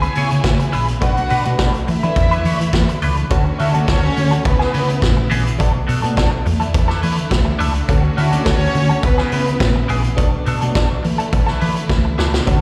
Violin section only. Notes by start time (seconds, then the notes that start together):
Already playing: G#4 G#5
1.03 F#4 F#5
1.88 E4 E5
3.59 E4 E5
3.74 D4 D5
3.87 C#4 C#5
4.45 B3 B4
8.17 E4 E5
8.33 D4 D5
8.46 C#4 C#5
9.04 B3 B4